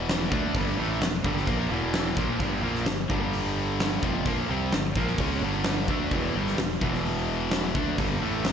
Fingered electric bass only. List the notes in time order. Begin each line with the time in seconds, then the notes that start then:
Already playing: E1
0.32 D2
0.55 G1
0.79 A1
1.01 E1
1.25 G1
1.47 A#1
1.69 E1
2.17 A#1
2.40 G1
2.63 A#1
2.86 G1
3.10 G1
4.03 F1
4.26 A#1
4.50 C2
4.74 G1
4.96 A#1
5.19 C#2
5.41 G1
5.88 D2
6.11 E1
6.35 G1
6.59 E1
6.82 E1
7.76 D2
7.99 G1
8.22 A1
8.46 E1